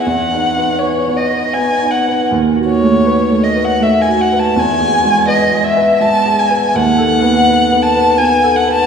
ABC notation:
X:1
M:3/4
L:1/16
Q:1/4=81
K:Bmix
V:1 name="Violin"
f4 c2 d2 g2 f2 | z2 c4 d f e g f a | g4 d2 e2 a2 g2 | f6 a2 g2 f a |]
V:2 name="Grand piano"
(3E,,2 D2 B,2 (3B2 B,2 B2 (3B,2 D2 B2 | (3D,,2 F2 A,2 (3B2 A,2 B2 (3A,2 F2 B2 | (3E,,2 G2 G,2 (3B2 G,2 B2 (3G,2 G2 B2 | (3D,,2 A2 B,2 (3B2 B,2 B2 (3B,2 A2 B2 |]